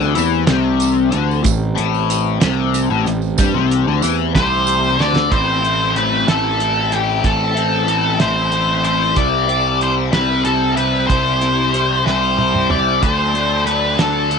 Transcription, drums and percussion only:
0.01 tambourine soft
0.15 closed hi-hat medium
0.15 tambourine medium
0.47 snare loud
0.47 closed hi-hat medium
0.47 tambourine soft
0.80 closed hi-hat medium
0.80 tambourine medium
1.12 closed hi-hat medium
1.12 tambourine soft
1.31 tambourine soft
1.44 kick loud
1.44 closed hi-hat loud
1.44 tambourine medium
1.78 closed hi-hat medium
1.95 tambourine soft
2.10 closed hi-hat medium
2.10 tambourine medium
2.41 snare loud
2.41 closed hi-hat loud
2.41 tambourine soft
2.74 closed hi-hat medium
2.74 tambourine medium
3.06 closed hi-hat medium
3.06 tambourine soft
3.22 tambourine soft
3.38 kick loud
3.38 closed hi-hat loud
3.38 tambourine loud
3.71 closed hi-hat medium
4.02 closed hi-hat medium
4.02 tambourine medium
4.35 kick medium
4.35 snare loud
4.35 closed hi-hat medium
4.35 tambourine soft
4.67 closed hi-hat medium
4.67 tambourine medium
4.84 tambourine soft
4.99 snare medium
4.99 tambourine soft
5.16 snare medium
5.32 kick loud
5.32 closed hi-hat medium
5.65 closed hi-hat medium
5.96 closed hi-hat medium
6.28 snare medium
6.28 closed hi-hat medium
6.60 closed hi-hat medium
6.92 closed hi-hat medium
7.24 kick loud
7.24 closed hi-hat medium
7.57 closed hi-hat medium
7.88 closed hi-hat medium
8.20 snare loud
8.20 closed hi-hat medium
8.52 closed hi-hat medium
8.85 closed hi-hat medium
9.16 kick loud
9.16 closed hi-hat medium
9.49 closed hi-hat soft
9.81 closed hi-hat soft
10.13 snare loud
10.13 closed hi-hat medium
10.45 closed hi-hat medium
10.77 closed hi-hat soft
11.10 kick loud
11.10 closed hi-hat medium
11.41 closed hi-hat medium
11.74 closed hi-hat medium
12.06 snare medium
12.38 high tom medium
12.55 mid tom medium
12.70 mid tom medium
13.03 kick loud
13.03 closed hi-hat medium
13.35 closed hi-hat medium
13.67 closed hi-hat medium
13.99 snare loud
13.99 closed hi-hat medium
14.31 closed hi-hat medium

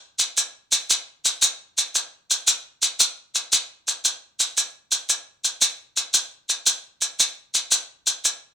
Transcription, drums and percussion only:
0.19 maracas medium
0.37 maracas medium
0.72 maracas medium
0.90 maracas medium
1.25 maracas medium
1.42 maracas medium
1.78 maracas medium
1.95 maracas medium
2.31 maracas medium
2.47 maracas medium
2.82 maracas medium
3.00 maracas medium
3.35 maracas medium
3.53 maracas medium
3.88 maracas medium
4.05 maracas medium
4.40 maracas medium
4.57 maracas medium
4.92 maracas medium
5.09 maracas medium
5.44 maracas medium
5.61 maracas medium
5.97 maracas medium
6.14 maracas medium
6.49 maracas medium
6.66 maracas medium
7.02 maracas medium
7.20 maracas medium
7.55 maracas medium
7.71 maracas medium
8.07 maracas medium
8.25 maracas medium

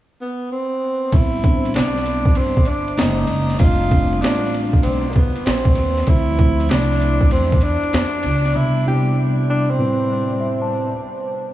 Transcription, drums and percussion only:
1.12 kick loud
1.12 ride medium
1.44 kick medium
1.44 ride soft
1.65 ride soft
1.74 snare loud
1.74 hi-hat pedal soft
1.74 ride medium
1.96 snare soft
2.06 ride medium
2.25 kick medium
2.35 ride medium
2.57 kick medium
2.65 ride soft
2.88 ride soft
2.98 snare loud
2.98 hi-hat pedal soft
2.98 ride medium
3.27 ride medium
3.50 snare soft
3.50 ride soft
3.59 kick loud
3.59 ride medium
3.91 kick medium
3.91 ride medium
4.13 ride soft
4.22 snare loud
4.22 hi-hat pedal soft
4.22 ride medium
4.44 snare soft
4.54 ride medium
4.73 kick medium
4.83 ride medium
5.13 kick medium
5.13 ride soft
5.36 ride soft
5.46 snare loud
5.46 hi-hat pedal soft
5.46 ride medium
5.65 kick loud
5.75 ride medium
5.97 snare soft
5.97 ride soft
6.07 kick loud
6.07 ride medium
6.39 kick medium
6.39 ride soft
6.60 ride soft
6.69 snare loud
6.69 hi-hat pedal soft
6.69 ride medium
6.91 snare soft
7.01 ride medium
7.21 kick medium
7.31 ride medium
7.52 kick medium
7.61 ride medium
7.83 ride soft
7.93 snare loud
7.93 hi-hat pedal soft
7.93 ride medium
8.23 ride medium
8.45 snare soft
8.45 ride soft

